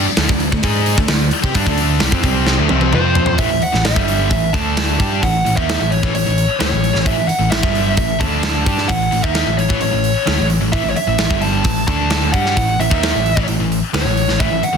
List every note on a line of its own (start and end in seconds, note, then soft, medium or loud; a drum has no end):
0.00 2.89 D5 medium
0.07 muted picked electric bass stroke soft
0.07 muted distorted electric guitar stroke medium
0.17 0.28 D2 medium
0.17 0.28 D3 medium
0.17 0.29 A3 loud
0.17 snare loud
0.17 open hi-hat medium
0.29 0.51 D2 medium
0.29 0.48 D3 medium
0.29 0.48 A3 medium
0.29 kick medium
0.40 open hi-hat medium
0.52 0.63 D2 medium
0.52 0.64 D3 medium
0.52 0.62 A3 medium
0.52 kick medium
0.63 0.96 G#2 loud
0.63 0.97 G#3 medium
0.63 0.98 D#4 medium
0.63 0.98 G#4 loud
0.63 kick loud
0.63 open hi-hat medium
0.86 open hi-hat medium
0.98 1.08 D2 medium
0.98 1.08 D3 medium
0.98 1.08 A3 medium
0.98 kick medium
1.08 1.31 D2 medium
1.08 1.28 D3 medium
1.08 1.28 A3 medium
1.08 snare loud
1.08 open hi-hat medium
1.31 open hi-hat medium
1.42 1.55 C3 medium
1.42 1.54 C4 medium
1.42 1.55 G4 loud
1.42 kick loud
1.55 1.66 G2 loud
1.55 1.66 G3 medium
1.55 1.66 D4 medium
1.55 kick medium
1.55 open hi-hat medium
1.66 1.99 D2 loud
1.66 2.00 D3 medium
1.66 2.00 A3 medium
1.66 2.01 D4 loud
1.66 kick medium
1.78 open hi-hat medium
2.00 2.11 C2 medium
2.00 2.12 C3 medium
2.00 2.12 G3 loud
2.00 snare loud
2.00 open hi-hat medium
2.12 2.23 F2 medium
2.12 2.23 F3 medium
2.12 2.24 C4 loud
2.12 kick loud
2.23 2.56 C2 medium
2.23 2.58 C3 medium
2.23 2.58 G3 medium
2.23 2.58 C4 loud
2.23 kick medium
2.23 open hi-hat medium
2.47 snare medium
2.59 2.69 D2 loud
2.59 2.69 D3 medium
2.59 2.70 A3 loud
2.69 2.92 C2 loud
2.69 2.92 C3 loud
2.69 2.92 G3 medium
2.69 2.92 C4 loud
2.69 high tom medium
2.81 high tom medium
2.93 3.36 F2 loud
2.93 3.38 F3 medium
2.93 3.39 C4 medium
2.93 3.39 F4 loud
2.93 3.39 F4 medium
2.93 3.39 C5 medium
2.93 3.37 C5 medium
2.93 3.39 G5 medium
2.93 mid tom medium
3.15 floor tom loud
3.26 floor tom medium
3.38 3.49 A1 medium
3.38 3.49 A2 medium
3.38 3.49 E3 medium
3.38 3.62 E5 medium
3.38 kick loud
3.38 open hi-hat medium
3.50 3.61 A1 medium
3.50 3.60 A2 medium
3.50 3.62 E3 medium
3.61 3.84 F#5 medium
3.61 muted distorted electric guitar stroke medium
3.61 muted picked electric bass stroke soft
3.61 open hi-hat medium
3.73 3.84 A1 medium
3.73 3.83 A2 medium
3.73 3.83 E3 medium
3.73 snare soft
3.84 3.96 A1 medium
3.84 3.96 A2 medium
3.84 3.96 E3 medium
3.84 4.29 E5 loud
3.84 snare loud
3.84 open hi-hat medium
3.95 4.28 G1 medium
3.95 4.29 G2 medium
3.95 4.30 D3 medium
3.95 4.30 G3 medium
3.95 kick loud
4.08 open hi-hat medium
4.30 4.52 A1 medium
4.30 4.49 A2 medium
4.30 4.49 E3 medium
4.30 4.52 E5 medium
4.30 kick medium
4.30 open hi-hat medium
4.53 4.96 D2 medium
4.53 4.99 D3 medium
4.53 4.99 A3 medium
4.53 4.98 D4 medium
4.53 5.24 A5 loud
4.53 kick medium
4.53 open hi-hat soft
4.77 snare loud
4.77 open hi-hat medium
5.00 5.21 G2 medium
5.00 5.22 G3 medium
5.00 5.22 D4 medium
5.00 5.22 G4 medium
5.00 kick loud
5.00 open hi-hat medium
5.22 5.44 A1 medium
5.22 5.41 A2 medium
5.22 5.41 E3 medium
5.22 5.56 F#5 medium
5.22 kick medium
5.22 open hi-hat medium
5.45 5.56 A1 medium
5.45 5.57 A2 medium
5.45 5.57 E3 medium
5.45 open hi-hat medium
5.56 5.78 D#2 loud
5.56 5.79 D#3 medium
5.56 5.80 A#3 medium
5.56 5.80 D#4 loud
5.56 5.92 E5 medium
5.56 kick medium
5.69 snare loud
5.69 open hi-hat medium
5.80 6.01 A1 medium
5.80 5.99 A2 medium
5.80 5.99 E3 medium
5.91 6.14 C#5 medium
5.91 open hi-hat soft
6.03 6.14 A1 medium
6.03 6.13 A2 medium
6.03 6.13 E3 medium
6.03 kick loud
6.14 6.25 A1 medium
6.14 6.25 A2 medium
6.14 6.25 E3 medium
6.14 6.59 C#5 loud
6.14 open hi-hat medium
6.26 6.48 A1 medium
6.26 6.44 A2 medium
6.26 6.44 E3 medium
6.38 open hi-hat soft
6.60 6.71 D2 medium
6.60 6.70 D3 medium
6.60 6.71 A3 loud
6.60 7.03 C#5 medium
6.60 snare loud
6.60 open hi-hat medium
6.71 6.93 A1 medium
6.71 6.89 A2 medium
6.71 6.90 E3 medium
6.84 open hi-hat medium
6.93 7.05 A1 medium
6.93 7.04 A2 medium
6.93 7.05 E3 medium
6.93 snare soft
7.05 7.16 A1 medium
7.05 7.15 A2 medium
7.05 7.16 E3 medium
7.05 7.28 E5 medium
7.05 kick loud
7.05 open hi-hat medium
7.17 7.28 A1 medium
7.17 7.28 A2 medium
7.17 7.29 E3 medium
7.28 7.50 F#5 medium
7.28 muted distorted electric guitar stroke medium
7.28 muted picked electric bass stroke soft
7.28 open hi-hat medium
7.39 7.50 A1 medium
7.39 7.49 A2 medium
7.39 7.50 E3 medium
7.50 7.62 A1 medium
7.50 7.62 A2 medium
7.50 7.63 E3 medium
7.50 7.94 E5 medium
7.50 snare loud
7.50 open hi-hat medium
7.61 7.95 G1 medium
7.61 7.96 G2 medium
7.61 7.95 D3 medium
7.61 7.96 G3 medium
7.61 kick loud
7.75 open hi-hat medium
7.96 8.19 A1 medium
7.96 8.15 A2 medium
7.96 8.15 E3 medium
7.96 8.21 E5 medium
7.96 kick medium
7.96 open hi-hat medium
8.19 8.64 D2 loud
8.19 8.65 D3 medium
8.19 8.65 A3 medium
8.19 8.65 D4 medium
8.19 8.91 A5 loud
8.19 kick loud
8.19 open hi-hat medium
8.43 snare loud
8.43 open hi-hat medium
8.65 8.88 G2 medium
8.65 8.88 G3 medium
8.65 8.89 D4 medium
8.65 8.89 G4 medium
8.65 kick loud
8.65 open hi-hat medium
8.78 snare soft
8.88 9.11 A1 medium
8.88 9.07 A2 medium
8.88 9.07 E3 medium
8.88 9.23 F#5 medium
8.88 kick medium
8.88 open hi-hat medium
9.11 9.23 A1 medium
9.11 9.23 A2 medium
9.11 9.24 E3 medium
9.11 open hi-hat medium
9.23 9.45 D#2 medium
9.23 9.46 D#3 medium
9.23 9.46 A#3 medium
9.23 9.47 D#4 loud
9.23 9.59 E5 medium
9.23 kick medium
9.35 snare loud
9.35 open hi-hat medium
9.46 9.68 A1 medium
9.46 9.65 A2 medium
9.46 9.65 E3 medium
9.57 9.81 C#5 medium
9.57 open hi-hat medium
9.69 9.81 A1 medium
9.69 9.80 A2 medium
9.69 9.80 E3 medium
9.69 kick loud
9.81 9.92 A1 medium
9.81 9.91 A2 medium
9.81 9.92 E3 medium
9.81 10.47 C#5 medium
9.81 open hi-hat medium
9.92 10.15 A1 medium
9.92 10.11 A2 medium
9.92 10.11 E3 medium
10.04 open hi-hat medium
10.27 10.38 D2 medium
10.27 10.38 D3 medium
10.27 10.38 A3 loud
10.27 snare loud
10.27 open hi-hat medium
10.38 10.60 A1 medium
10.38 10.57 A2 medium
10.38 10.57 E3 medium
10.50 open hi-hat medium
10.61 10.72 A1 medium
10.61 10.71 A2 medium
10.61 10.72 E3 medium
10.72 10.84 A1 medium
10.72 10.83 A2 medium
10.72 10.83 E3 medium
10.72 10.89 E5 medium
10.72 kick loud
10.72 open hi-hat medium
10.84 10.95 A1 medium
10.84 10.94 A2 medium
10.84 10.96 E3 medium
10.90 10.96 C#5 medium
10.96 11.39 E5 medium
10.96 muted distorted electric guitar stroke medium
10.96 muted picked electric bass stroke soft
10.96 open hi-hat medium
11.07 11.18 A1 medium
11.07 11.17 A2 medium
11.07 11.18 E3 medium
11.18 11.29 A1 medium
11.18 11.30 A2 medium
11.18 11.30 E3 medium
11.18 snare loud
11.18 open hi-hat medium
11.29 11.63 G1 medium
11.29 11.64 G2 medium
11.29 11.64 D3 medium
11.29 11.64 G3 medium
11.29 kick medium
11.42 11.86 A5 medium
11.42 open hi-hat medium
11.64 11.86 A1 medium
11.64 11.83 A2 medium
11.64 11.83 E3 medium
11.64 kick medium
11.64 open hi-hat medium
11.87 12.30 D2 loud
11.87 12.32 D3 medium
11.87 12.33 A3 loud
11.87 12.33 D4 loud
11.87 12.32 A5 loud
11.87 kick medium
12.10 snare loud
12.10 open hi-hat medium
12.32 12.55 G2 medium
12.32 12.56 G3 medium
12.32 12.56 D4 medium
12.32 12.57 G4 medium
12.32 12.80 F#5 medium
12.32 kick loud
12.32 open hi-hat medium
12.46 snare soft
12.56 12.78 A1 medium
12.56 12.75 A2 medium
12.56 12.75 E3 medium
12.56 kick medium
12.56 open hi-hat medium
12.79 12.90 A1 medium
12.79 12.90 A2 medium
12.79 12.90 E3 medium
12.79 13.44 E5 medium
12.79 open hi-hat medium
12.90 13.12 D#2 medium
12.90 13.13 D#3 medium
12.90 13.13 A#3 medium
12.90 13.13 D#4 loud
12.90 kick loud
13.03 snare loud
13.03 open hi-hat medium
13.13 13.36 A1 medium
13.13 13.32 A2 medium
13.13 13.32 E3 medium
13.26 open hi-hat soft
13.36 13.48 A1 medium
13.36 13.46 A2 medium
13.36 13.47 E3 medium
13.36 kick loud
13.48 13.59 A1 medium
13.48 13.59 A2 medium
13.48 13.59 E3 medium
13.48 open hi-hat medium
13.60 13.81 A1 medium
13.60 13.78 A2 medium
13.60 13.79 E3 medium
13.72 open hi-hat soft
13.94 14.05 D2 loud
13.94 14.05 D3 medium
13.94 14.05 A3 loud
13.94 14.40 C#5 medium
13.94 snare loud
13.94 open hi-hat medium
14.05 14.27 A1 medium
14.05 14.24 A2 medium
14.05 14.24 E3 medium
14.18 open hi-hat medium
14.29 14.39 A1 medium
14.29 14.37 A2 medium
14.29 14.38 E3 medium
14.29 snare soft
14.39 14.50 A1 medium
14.39 14.49 A2 medium
14.39 14.50 E3 medium
14.39 14.64 E5 medium
14.39 kick loud
14.39 open hi-hat medium
14.50 14.62 A1 medium
14.50 14.61 A2 medium
14.50 14.63 E3 medium
14.62 14.77 F#5 medium
14.62 muted distorted electric guitar stroke medium
14.62 muted picked electric bass stroke soft
14.62 open hi-hat soft
14.73 14.77 A2 medium
14.73 14.77 E3 medium